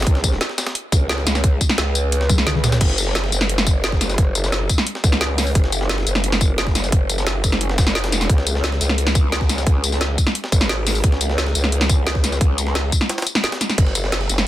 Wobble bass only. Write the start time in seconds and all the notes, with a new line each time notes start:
0.07 C#2
0.92 C#2
1.09 C#2
1.27 C#2
1.78 C#2
2.64 C#2
2.81 F#1
3.32 F#1
4.18 F#1
5.04 C#2
5.55 F#1
6.07 F#1
6.92 F#1
7.44 F#1
8.04 F1
8.29 C#2
8.81 C#2
9.67 C#2
10.52 G#1
11.04 C#2
11.55 C#2
12.41 C#2
13.78 F#1
14.29 F#1